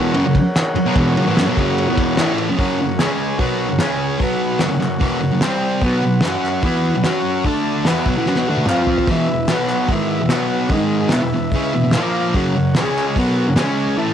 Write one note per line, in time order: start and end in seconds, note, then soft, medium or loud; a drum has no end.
0.00 0.13 E2 medium
0.00 0.15 B2 loud
0.00 0.16 E3 loud
0.00 2.32 A#4 medium
0.00 2.33 C#5 medium
0.00 2.33 F#5 medium
0.14 0.24 F#2 medium
0.14 0.25 C#3 loud
0.14 ride loud
0.26 0.34 F#2 medium
0.26 0.36 C#3 medium
0.35 muted distorted electric guitar stroke medium
0.35 kick medium
0.35 ride medium
0.56 snare loud
0.56 clap medium
0.56 ride loud
0.75 muted distorted electric guitar stroke medium
0.75 ride medium
0.86 0.96 B2 medium
0.86 0.96 F#3 loud
0.96 1.16 E2 medium
0.96 1.17 B2 medium
0.96 1.17 E3 loud
0.96 kick loud
0.96 ride loud
1.17 1.27 F#2 medium
1.17 1.26 C#3 loud
1.17 ride medium
1.26 1.36 A2 medium
1.26 1.37 E3 medium
1.37 1.47 F#2 loud
1.37 1.46 C#3 loud
1.37 snare loud
1.37 clap medium
1.37 ride loud
1.47 1.57 B2 medium
1.47 1.57 F#3 loud
1.57 1.87 F#2 medium
1.57 1.88 C#3 medium
1.57 1.88 F#3 loud
1.57 kick medium
1.57 ride medium
1.78 ride medium
1.88 2.18 E2 medium
1.88 2.18 B2 loud
1.88 2.19 E3 loud
1.97 kick medium
1.97 ride medium
2.17 2.49 A2 loud
2.17 2.49 E3 loud
2.17 2.50 A3 loud
2.17 snare loud
2.17 clap medium
2.17 ride medium
2.38 ride medium
2.49 2.57 F#2 medium
2.49 2.59 C#3 medium
2.58 2.78 F#2 medium
2.58 2.79 C#3 medium
2.58 2.79 F#3 loud
2.58 3.00 A#4 medium
2.58 2.98 C#5 medium
2.58 2.99 F#5 medium
2.58 kick loud
2.58 open hi-hat medium
2.81 2.96 F#2 medium
2.81 2.97 C#3 medium
2.98 3.39 C#3 medium
2.98 3.40 G#3 medium
2.98 3.40 C#4 medium
2.98 3.39 G#4 medium
2.98 3.36 C#5 medium
2.98 3.40 G#5 medium
2.98 snare loud
2.98 clap medium
2.98 open hi-hat medium
3.37 3.69 B2 medium
3.37 3.70 F#3 loud
3.37 3.70 B3 loud
3.37 3.79 A#4 medium
3.37 3.79 C#5 medium
3.37 3.80 F#5 medium
3.37 kick loud
3.37 open hi-hat medium
3.68 3.80 F#2 medium
3.68 3.78 C#3 medium
3.79 4.18 C#3 medium
3.79 4.20 G#3 loud
3.79 4.21 C#4 loud
3.79 4.21 G#4 medium
3.79 4.21 C#5 medium
3.79 4.21 G#5 medium
3.79 snare loud
3.79 clap medium
3.79 open hi-hat medium
4.19 4.60 B2 medium
4.19 4.61 F#3 medium
4.19 4.61 B3 loud
4.19 kick loud
4.19 open hi-hat medium
4.23 4.63 F#4 medium
4.23 4.63 B4 medium
4.23 4.61 F#5 medium
4.59 4.70 F#2 medium
4.59 4.70 C#3 medium
4.59 5.42 A#4 medium
4.59 5.42 C#5 medium
4.59 5.42 F#5 medium
4.59 snare loud
4.59 clap loud
4.59 open hi-hat medium
4.71 4.79 F#2 medium
4.71 4.79 C#3 medium
4.80 4.97 F#2 medium
4.80 4.98 C#3 medium
4.80 clap medium
5.00 5.21 E2 medium
5.00 5.21 B2 medium
5.00 5.22 E3 loud
5.00 kick loud
5.00 open hi-hat medium
5.21 5.31 F#2 medium
5.21 5.32 C#3 medium
5.32 5.43 F#2 medium
5.32 5.41 C#3 medium
5.41 5.82 C3 medium
5.41 5.83 G3 medium
5.41 5.83 C4 loud
5.41 5.84 G4 medium
5.41 5.84 C5 medium
5.41 5.84 G5 medium
5.41 snare loud
5.41 clap loud
5.41 open hi-hat medium
5.81 6.02 B2 medium
5.81 6.03 F#3 loud
5.81 6.04 B3 loud
5.81 kick loud
5.81 open hi-hat medium
5.86 6.25 F#4 medium
5.86 6.25 B4 medium
5.86 6.25 F#5 medium
6.03 6.20 B2 medium
6.03 6.20 F#3 medium
6.21 6.63 F#3 medium
6.21 6.64 C#4 loud
6.21 6.64 F#4 medium
6.21 snare loud
6.21 open hi-hat medium
6.25 6.65 F#4 medium
6.25 6.66 C#5 medium
6.25 6.66 F#5 medium
6.25 clap medium
6.46 clap medium
6.62 6.94 E3 medium
6.62 6.95 B3 medium
6.62 6.95 E4 loud
6.62 7.03 F#4 medium
6.62 7.06 B4 medium
6.62 kick loud
6.62 open hi-hat medium
6.67 7.02 F#5 medium
6.96 7.05 B2 medium
6.96 7.04 F#3 medium
7.03 7.45 F#3 loud
7.03 7.46 C#4 loud
7.03 7.46 F#4 medium
7.03 7.45 C#5 medium
7.03 7.45 F#5 medium
7.03 snare loud
7.03 clap medium
7.03 open hi-hat medium
7.45 7.86 D3 medium
7.45 7.86 A3 medium
7.45 7.87 D4 loud
7.45 7.86 A4 medium
7.45 7.86 D5 medium
7.45 7.87 A5 medium
7.45 kick loud
7.45 open hi-hat medium
7.85 8.06 E3 medium
7.85 8.07 B3 medium
7.85 8.07 E4 medium
7.85 8.67 F#4 medium
7.85 8.67 B4 medium
7.85 8.67 F#5 medium
7.85 snare loud
7.85 clap medium
7.85 open hi-hat medium
8.06 8.16 B2 medium
8.06 8.17 F#3 loud
8.06 kick loud
8.17 8.27 A2 medium
8.17 8.27 E3 loud
8.26 8.37 F#3 medium
8.26 8.38 C#4 loud
8.26 snare medium
8.35 8.47 B2 medium
8.35 8.48 F#3 medium
8.35 snare medium
8.49 8.67 D3 medium
8.49 8.68 A3 loud
8.49 8.69 D4 loud
8.57 high tom medium
8.66 9.08 F3 medium
8.66 9.08 C4 loud
8.66 9.09 F4 loud
8.66 9.10 F4 medium
8.66 9.10 C5 medium
8.66 9.09 F5 medium
8.66 clap medium
8.66 mid tom medium
8.87 floor tom medium
8.98 floor tom medium
9.07 9.28 E2 medium
9.07 9.28 B2 loud
9.07 9.30 E3 medium
9.07 9.51 E4 medium
9.07 9.50 B4 medium
9.07 kick loud
9.07 open hi-hat medium
9.07 splash medium
9.12 9.51 E5 medium
9.29 9.45 E2 medium
9.29 9.46 B2 medium
9.48 9.89 B2 medium
9.48 9.90 F#3 medium
9.48 9.90 B3 medium
9.48 9.91 F#4 medium
9.48 snare loud
9.48 clap medium
9.48 open hi-hat medium
9.53 9.91 B4 medium
9.53 9.92 F#5 medium
9.69 clap medium
9.89 10.20 G#2 medium
9.89 10.21 D#3 medium
9.89 10.21 G#3 medium
9.89 10.32 E4 medium
9.89 10.32 E5 medium
9.89 kick medium
9.89 open hi-hat medium
9.93 10.30 B4 medium
10.21 10.31 E2 medium
10.21 10.28 B2 medium
10.29 10.72 B2 medium
10.29 10.72 F#3 medium
10.29 10.71 B3 loud
10.29 10.72 F#4 medium
10.29 10.72 B4 medium
10.29 10.72 F#5 medium
10.29 snare loud
10.29 clap medium
10.29 open hi-hat medium
10.69 11.11 G#2 medium
10.69 11.12 D#3 loud
10.69 11.12 G#3 loud
10.69 11.12 D#5 medium
10.69 kick loud
10.69 open hi-hat medium
10.73 11.13 D#4 medium
10.73 11.13 G#4 medium
11.09 11.22 E2 medium
11.09 11.22 B2 loud
11.09 11.92 E4 medium
11.09 11.91 B4 medium
11.09 11.92 E5 medium
11.09 snare loud
11.09 clap medium
11.09 open hi-hat medium
11.23 11.33 E2 medium
11.23 11.33 B2 medium
11.34 11.50 E2 medium
11.34 11.50 B2 medium
11.51 11.73 C#3 medium
11.51 11.74 G#3 medium
11.51 11.74 C#4 medium
11.51 kick loud
11.51 open hi-hat medium
11.74 11.82 E2 medium
11.74 11.83 B2 medium
11.84 11.94 E2 medium
11.84 11.94 B2 medium
11.91 12.34 A#2 loud
11.91 12.35 F3 loud
11.91 12.34 F4 medium
11.91 12.34 A#4 medium
11.91 12.34 F5 medium
11.91 snare loud
11.91 clap loud
11.91 open hi-hat medium
11.96 12.35 A#3 loud
12.34 12.54 F#2 medium
12.34 12.55 C#3 loud
12.34 12.55 F#3 loud
12.34 12.76 A#4 medium
12.34 12.75 C#5 medium
12.34 12.75 F#5 medium
12.34 kick loud
12.34 open hi-hat medium
12.56 12.72 F#2 medium
12.56 12.72 C#3 medium
12.75 13.16 C#3 medium
12.75 13.16 G#3 medium
12.75 13.17 C#4 medium
12.75 13.17 G#4 medium
12.75 13.16 C#5 medium
12.75 13.17 G#5 medium
12.75 snare loud
12.75 clap medium
12.75 open hi-hat medium
12.98 clap medium
13.16 13.46 B2 medium
13.16 13.47 F#3 loud
13.16 13.47 B3 loud
13.16 13.58 A#4 medium
13.16 13.54 C#5 medium
13.16 13.58 F#5 medium
13.16 kick loud
13.16 open hi-hat medium
13.48 13.57 F#2 medium
13.48 13.55 C#3 medium
13.55 13.96 C#3 medium
13.55 13.97 G#3 medium
13.55 13.98 C#4 loud
13.55 13.97 G#4 medium
13.55 13.97 C#5 medium
13.55 13.97 G#5 medium
13.55 snare loud
13.55 clap loud
13.55 open hi-hat medium
13.97 14.14 A2 medium
13.97 14.14 E3 loud
13.97 14.14 A3 loud
13.97 14.14 A4 medium
13.97 14.14 E5 medium
13.97 14.14 A5 medium